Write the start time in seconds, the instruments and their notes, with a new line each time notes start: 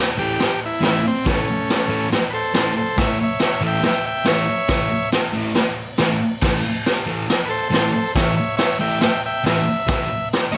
0.17 distorted electric guitar A2 E3 A3, transistor combo organ G4, shaker
0.30 shaker
0.39 snare, open hi-hat, shaker
0.62 transistor combo organ E4, shaker
0.73 shaker
0.81 distorted electric guitar A2 E3 A3, snare, open hi-hat, shaker
0.88 transistor combo organ E4
1.05 transistor combo organ C4, shaker
1.24 distorted electric guitar A2 E3 A3, transistor combo organ A3 C#4, kick, snare, open hi-hat, shaker
1.47 shaker
1.69 snare, open hi-hat, shaker
1.88 distorted electric guitar A2 E3 A3, shaker
2.03 shaker
2.12 snare, open hi-hat, shaker
2.30 transistor combo organ A4 B4, shaker
2.34 transistor combo organ C5
2.44 shaker
2.54 distorted electric guitar A2 E3 A3, transistor combo organ A4 C5, snare, open hi-hat, shaker
2.76 transistor combo organ A4 C5, shaker
2.97 distorted electric guitar A2 E3 A3, transistor combo organ C#5 E5, kick, snare, open hi-hat, shaker
3.21 transistor combo organ C#5 E5, shaker
3.39 transistor combo organ C#5, snare, open hi-hat, shaker
3.43 transistor combo organ E5
3.61 distorted electric guitar A2 E3 A3, shaker
3.66 transistor combo organ E5 G5
3.73 shaker
3.83 transistor combo organ E5 G5, snare, open hi-hat, shaker
4.04 transistor combo organ E5 G5, shaker
4.16 shaker
4.25 distorted electric guitar A2 E3 A3, transistor combo organ C#5 E5, snare, open hi-hat, shaker
4.47 shaker
4.68 distorted electric guitar A2 E3 A3, kick, snare, open hi-hat, shaker
4.92 shaker
5.04 shaker
5.12 snare, open hi-hat, shaker
5.33 distorted electric guitar A2 E3 A3, shaker
5.55 snare, open hi-hat, shaker
5.89 shaker
5.97 distorted electric guitar A2 E3 A3, snare, open hi-hat, shaker
6.22 shaker
6.41 distorted electric guitar A2 E3 A3, kick, snare, crash, shaker
6.65 shaker
6.86 snare, open hi-hat, shaker
7.07 distorted electric guitar A2 E3 A3, shaker
7.20 shaker
7.29 snare, open hi-hat, shaker
7.45 transistor combo organ A4 B4
7.50 transistor combo organ C5, shaker
7.63 shaker
7.69 distorted electric guitar A2 E3 A3, transistor combo organ A4 C5, open hi-hat
7.74 snare, shaker
7.91 transistor combo organ A4 C5
7.95 shaker
8.15 distorted electric guitar A2 E3 A3, transistor combo organ C#5 E5, kick, snare, open hi-hat, shaker
8.37 transistor combo organ C#5 E5, shaker
8.57 transistor combo organ C#5 E5, snare, open hi-hat
8.62 shaker
8.79 distorted electric guitar A2 E3 A3, transistor combo organ E5 G5, shaker
8.93 shaker
9.00 transistor combo organ E5 G5, snare, open hi-hat, shaker
9.26 transistor combo organ E5 G5, shaker
9.37 shaker
9.44 distorted electric guitar A2 E3 A3, transistor combo organ E5, snare, open hi-hat, shaker
9.67 shaker
9.87 distorted electric guitar A2 E3 A3, kick, snare, open hi-hat
9.91 shaker
10.10 shaker
10.33 snare, open hi-hat, shaker
10.52 distorted electric guitar A2 E3 A3, transistor combo organ D#5